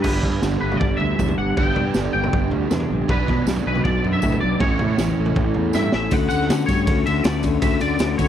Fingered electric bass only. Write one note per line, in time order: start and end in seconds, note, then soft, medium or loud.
0.04 0.18 G1 medium
0.23 0.37 G2 medium
0.42 0.56 G1 medium
0.62 0.76 G1 medium
0.81 0.95 G1 medium
1.01 1.14 D2 medium
1.19 1.33 E2 medium
1.38 1.52 G1 medium
1.57 1.71 G1 medium
1.76 1.90 G2 medium
1.96 2.09 G1 medium
2.14 2.28 G1 medium
2.34 2.47 G1 medium
2.53 2.66 D2 medium
2.71 2.85 E2 medium
2.90 3.04 A#1 medium
3.09 3.22 B1 medium
3.29 3.42 B2 medium
3.46 3.60 B1 medium
3.66 3.80 B1 medium
3.85 3.98 B1 medium
4.05 4.18 F#2 medium
4.23 4.37 A2 medium
4.44 4.56 B1 medium
4.60 4.74 A1 medium
4.81 4.94 A2 medium
4.99 5.12 A1 medium
5.19 5.32 A1 medium
5.36 5.50 A1 medium
5.57 5.70 E2 medium
5.75 5.88 G2 medium
5.94 6.07 A1 medium
6.12 6.29 D2 medium
6.31 6.49 D2 medium
6.51 6.68 D3 medium
6.68 6.86 G2 medium
6.87 7.05 D2 medium
7.07 7.24 D2 medium
7.25 7.60 D2 medium
7.62 7.80 D2 loud
7.82 7.99 D2 medium
8.01 8.19 D2 medium
8.19 8.28 D2 medium